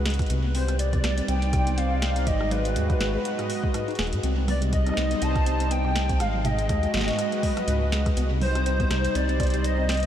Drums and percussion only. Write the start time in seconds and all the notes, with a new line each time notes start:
0.06 snare, closed hi-hat
0.10 closed hi-hat
0.14 closed hi-hat
0.19 kick, cross-stick, closed hi-hat
0.22 closed hi-hat
0.26 closed hi-hat
0.30 closed hi-hat
0.55 open hi-hat
0.68 cross-stick, closed hi-hat
0.79 closed hi-hat
0.93 kick, closed hi-hat
1.04 cross-stick, snare, closed hi-hat
1.18 closed hi-hat
1.28 closed hi-hat
1.42 closed hi-hat
1.53 kick, cross-stick, closed hi-hat
1.67 closed hi-hat
1.78 closed hi-hat
2.02 cross-stick, snare, closed hi-hat
2.16 closed hi-hat
2.27 kick, closed hi-hat
2.41 cross-stick
2.51 closed hi-hat, low conga
2.65 closed hi-hat
2.76 closed hi-hat
2.90 kick, cross-stick, closed hi-hat
3.01 snare, closed hi-hat
3.25 closed hi-hat
3.39 cross-stick, closed hi-hat
3.50 open hi-hat
3.64 kick
3.74 cross-stick, closed hi-hat
3.88 closed hi-hat
3.91 closed hi-hat
3.95 snare, closed hi-hat
3.99 closed hi-hat
4.03 closed hi-hat
4.07 closed hi-hat
4.13 closed hi-hat
4.23 closed hi-hat
4.48 cross-stick, open hi-hat, low conga
4.62 closed hi-hat
4.73 kick, closed hi-hat
4.86 cross-stick, closed hi-hat
4.89 cross-stick
4.94 cross-stick, snare, closed hi-hat
5.11 closed hi-hat
5.22 closed hi-hat
5.36 kick, cross-stick, closed hi-hat
5.46 closed hi-hat
5.60 closed hi-hat
5.71 closed hi-hat
5.85 cross-stick
5.96 snare, closed hi-hat
6.09 kick, closed hi-hat
6.20 cross-stick, closed hi-hat
6.45 closed hi-hat, low conga
6.59 closed hi-hat
6.69 kick, cross-stick, closed hi-hat
6.83 closed hi-hat
6.94 snare, closed hi-hat
6.97 snare
7.01 snare
7.04 snare
7.08 snare, closed hi-hat
7.10 snare
7.13 snare
7.16 cross-stick, snare, closed hi-hat
7.32 closed hi-hat
7.43 kick, open hi-hat
7.57 cross-stick, closed hi-hat
7.68 closed hi-hat
7.92 snare, closed hi-hat
8.06 kick, cross-stick, closed hi-hat
8.17 closed hi-hat
8.41 open hi-hat, low conga
8.55 cross-stick, closed hi-hat
8.66 closed hi-hat
8.80 kick, closed hi-hat
8.91 cross-stick, snare, closed hi-hat
9.04 closed hi-hat
9.15 closed hi-hat
9.29 closed hi-hat
9.40 kick, cross-stick, closed hi-hat
9.43 closed hi-hat
9.47 closed hi-hat
9.50 closed hi-hat
9.54 closed hi-hat
9.64 closed hi-hat
9.89 cross-stick, snare, closed hi-hat
9.92 closed hi-hat
9.95 closed hi-hat
9.97 closed hi-hat
10.00 closed hi-hat
10.03 closed hi-hat